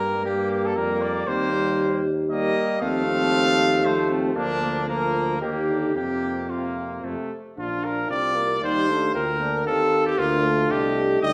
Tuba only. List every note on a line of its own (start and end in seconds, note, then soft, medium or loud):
0.00 0.78 G2 medium
0.76 1.27 F2 medium
1.27 2.52 D#2 medium
2.82 4.32 D#2 medium
4.36 5.42 D2 medium
5.40 5.94 D#2 medium
5.95 7.02 F2 medium
7.03 7.16 F2 medium
7.58 8.06 A#1 medium
8.10 8.64 C2 medium
8.62 9.14 D#2 medium
9.15 9.68 D2 medium
9.66 10.18 D#2 medium
10.18 10.69 D2 medium
10.70 11.21 C2 medium
11.22 11.33 D2 medium